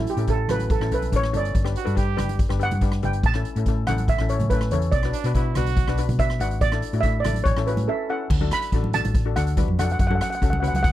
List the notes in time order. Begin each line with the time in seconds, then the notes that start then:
0.07 G4, closed hi-hat
0.17 A2 C#4 E4 A4, closed hi-hat
0.27 C#4 E4 A4, kick, closed hi-hat
0.48 A1 C#4 E4 F#4 B4, cross-stick, closed hi-hat, high conga, low conga
0.59 closed hi-hat, high conga
0.70 A4, kick, closed hi-hat
0.80 A1 C#4 E4 A4, cross-stick
0.91 B1 C#4 E4 A4 B4, closed hi-hat
1.02 closed hi-hat, high conga
1.12 A1 C#4 E4 A4, kick, closed hi-hat
1.16 C#5
1.23 cross-stick
1.33 G1 C#4 E4 A4 D5, closed hi-hat, low conga
1.45 closed hi-hat
1.55 G1, kick, closed hi-hat
1.65 D4 G4 B4, cross-stick
1.76 F#4, closed hi-hat
1.85 G2 D4 A4 B4, closed hi-hat
1.96 D4 G4 B4, kick, closed hi-hat
2.17 G1 D4 G4 B4, cross-stick, closed hi-hat, high conga, low conga
2.29 closed hi-hat, high conga
2.39 kick, closed hi-hat
2.49 G1 D4 G4 B4, cross-stick
2.59 D4 G4 B4 F#5, closed hi-hat
2.71 G2, closed hi-hat, high conga, low conga
2.81 D4 G4 B4, kick, closed hi-hat
2.92 cross-stick
3.03 G1 D4 G4 B4 G5, closed hi-hat, low conga
3.13 closed hi-hat
3.23 A1 A5, kick, closed hi-hat
3.34 C#4 E4 A4, cross-stick
3.45 closed hi-hat
3.56 A2 C#4 E4 A4, closed hi-hat
3.66 C#4 E4 A4, kick, closed hi-hat
3.87 A1 C#4 E4 A4 F#5, cross-stick, closed hi-hat, high conga, low conga
3.98 closed hi-hat, high conga
4.08 E5, kick, closed hi-hat
4.18 A1 C#4 E4 A4, cross-stick
4.29 C#4 E4 A4 C#5, closed hi-hat
4.39 A2, closed hi-hat, high conga, low conga
4.50 C#4 E4 A4 B4, kick, closed hi-hat
4.61 cross-stick
4.71 E2 C#4 E4 A4 C#5, closed hi-hat, low conga
4.82 closed hi-hat
4.92 B1 D5, kick, closed hi-hat
5.03 D4 F#4 B4, cross-stick
5.13 D4, closed hi-hat
5.24 B2 D4 F#4 B4, closed hi-hat
5.34 D4 E4 F#4 B4, kick, closed hi-hat
5.55 B1 D4 F#4 B4, cross-stick, closed hi-hat, high conga, low conga
5.66 closed hi-hat, high conga
5.77 kick, closed hi-hat
5.88 B1 D4 F#4 B4, cross-stick
5.97 D4 F#4 B4, closed hi-hat
6.09 B2, closed hi-hat, high conga, low conga
6.19 D4 F#4 B4 E5, kick, closed hi-hat
6.30 cross-stick
6.39 G#1 D4 F#4 B4 F#5, closed hi-hat
6.51 closed hi-hat
6.61 A1 D5, kick, closed hi-hat
6.72 D4 E4 A4, cross-stick
6.82 closed hi-hat
6.93 A2 D4 E4 F#4, closed hi-hat
7.01 D4 E4 E5, kick, closed hi-hat
7.05 A4
7.20 A1 D5
7.25 D4 E4 A4, cross-stick, closed hi-hat, high conga, low conga
7.34 closed hi-hat, high conga
7.44 A1 C#5, kick, closed hi-hat
7.56 A1 C#4 E4 A4, cross-stick
7.67 C#4 E4 F#4 B4, closed hi-hat
7.77 A2, closed hi-hat, high conga
7.88 C#4 E4 A4 E5
8.09 C#4 E4 A4 F#5
8.30 D2, kick, crash
8.41 D4 F#4 A4, high conga
8.51 B5, cross-stick, closed hi-hat
8.62 closed hi-hat
8.72 A1 D4 F#4 A4, kick, closed hi-hat
8.84 high conga
8.93 D4 F#4 A4 A5, closed hi-hat, low conga
9.04 A1, closed hi-hat, high conga
9.15 kick, closed hi-hat
9.25 D4 F#4 A4
9.36 D2 D4 F#4 A4 F#5, cross-stick, closed hi-hat
9.47 closed hi-hat
9.57 D4 F#4 B4, kick, closed hi-hat, high conga
9.68 F2, high conga
9.79 D4 F#4 A4 F#5, cross-stick, closed hi-hat, low conga
9.85 F#5
9.89 F#5, closed hi-hat
9.99 F#2 F#5, kick, closed hi-hat
10.07 C#4 F#4 A4 F#5, high conga
10.15 F#5
10.21 F#5, cross-stick, closed hi-hat
10.30 F#5, closed hi-hat
10.35 F#5
10.41 C#2 C#4 F#4 A4 F#5, kick, closed hi-hat
10.50 F#5, high conga
10.60 C#4 F#4 B4 F#5, closed hi-hat, low conga
10.68 F#5
10.73 C#2 F#5, closed hi-hat, high conga
10.83 F#5, kick, closed hi-hat